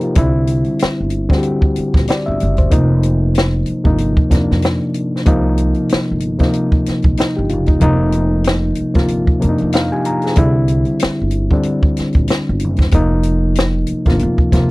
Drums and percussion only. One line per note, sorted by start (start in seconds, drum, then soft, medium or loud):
0.01 closed hi-hat soft
0.15 kick loud
0.15 closed hi-hat medium
0.47 closed hi-hat medium
0.64 closed hi-hat soft
0.79 snare medium
0.79 closed hi-hat medium
1.10 closed hi-hat medium
1.30 kick medium
1.30 snare soft
1.43 closed hi-hat medium
1.62 kick medium
1.76 closed hi-hat medium
1.94 kick medium
1.94 snare soft
2.08 snare medium
2.08 closed hi-hat medium
2.40 closed hi-hat medium
2.57 kick medium
2.57 closed hi-hat soft
2.71 kick loud
2.71 closed hi-hat medium
3.03 closed hi-hat medium
3.35 snare medium
3.35 closed hi-hat medium
3.66 closed hi-hat medium
3.85 kick medium
3.98 closed hi-hat medium
4.17 kick medium
4.31 kick medium
4.31 snare soft
4.31 closed hi-hat medium
4.51 snare soft
4.62 snare medium
4.62 closed hi-hat medium
4.94 closed hi-hat medium
5.16 snare soft
5.26 kick loud
5.26 closed hi-hat medium
5.58 closed hi-hat medium
5.74 closed hi-hat soft
5.89 snare medium
5.89 closed hi-hat medium
6.20 closed hi-hat medium
6.39 kick medium
6.39 snare soft
6.39 closed hi-hat soft
6.53 closed hi-hat medium
6.72 kick medium
6.86 snare soft
6.86 closed hi-hat medium
7.02 kick medium
7.02 closed hi-hat soft
7.17 snare medium
7.17 closed hi-hat medium
7.49 closed hi-hat medium
7.66 kick medium
7.66 closed hi-hat soft
7.81 kick medium
7.81 closed hi-hat medium
8.12 closed hi-hat medium
8.44 snare medium
8.44 closed hi-hat medium
8.75 closed hi-hat medium
8.94 kick medium
8.94 snare soft
8.94 closed hi-hat soft
9.08 closed hi-hat medium
9.27 kick medium
9.42 closed hi-hat medium
9.58 closed hi-hat soft
9.72 snare medium
9.72 closed hi-hat medium
10.05 closed hi-hat medium
10.22 closed hi-hat soft
10.26 snare soft
10.36 kick loud
10.36 closed hi-hat medium
10.68 closed hi-hat medium
10.85 closed hi-hat soft
10.99 snare medium
10.99 closed hi-hat medium
11.31 closed hi-hat medium
11.51 kick medium
11.63 closed hi-hat medium
11.83 kick medium
11.97 snare soft
11.97 closed hi-hat medium
12.13 kick medium
12.13 closed hi-hat soft
12.28 snare medium
12.28 closed hi-hat medium
12.60 closed hi-hat medium
12.76 kick medium
12.76 closed hi-hat soft
12.81 snare soft
12.91 kick loud
12.91 closed hi-hat medium
13.23 closed hi-hat medium
13.55 snare medium
13.55 closed hi-hat medium
13.87 closed hi-hat medium
14.05 kick medium
14.05 snare soft
14.05 closed hi-hat soft
14.19 closed hi-hat medium
14.38 kick medium
14.52 kick medium
14.52 snare soft
14.52 closed hi-hat medium